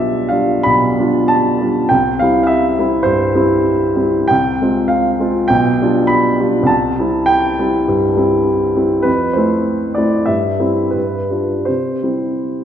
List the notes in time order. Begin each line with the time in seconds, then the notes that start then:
Already playing: B1 G3 D4 F4 D5 E5
0.29 G3 D4 F4 F5
0.63 B1 B5
0.99 G3 D4 F4
1.28 A5
1.61 G3 D4 F4
1.89 C2 G5
2.19 G3 C4 E4 F5
2.43 E5 F5
2.78 G3 C4 E4
3.03 G2 C5
3.35 G3 C4 E4
3.96 G3 C4 E4
4.28 C2 G5
4.62 G#3 C4 F4
4.88 F5
5.20 G#3 C4 F4
5.48 B1 G5
5.81 G3 D4 F4
6.07 B5
6.40 G3 D4 F4
6.63 C2 A5
6.99 G3 C4 E4
7.26 G5
7.59 G3 C4 E4
7.88 G2
8.16 G3 C4 E4
8.76 G3 C4 E4
9.02 F2 B4
9.33 A3 C4 E4 C5
9.95 A3 C4 E4 D5
10.26 G2 E5
10.60 G3 C4 E4
10.91 G2 B4
11.30 G3 D4 F4
11.65 C3 C5
12.03 G3 C4 E4